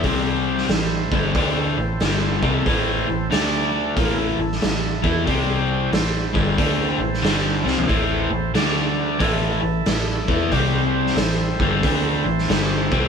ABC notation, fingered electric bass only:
X:1
M:4/4
L:1/8
Q:"Swing" 1/4=92
K:Am
V:1 name="Fingered electric bass" clef=bass
C,,2 A,,, G,,, D,, A,,, G,,, C,, | A,,, A,,, D,,2 A,,, A,,, A,,, E,, | C,,2 A,,, G,,, D,, A,,, G,,, C,, | A,,, A,,, D,,2 A,,, A,,, A,,, E,, |
C,,2 A,,, G,,, D,, A,,, G,,, C,, |]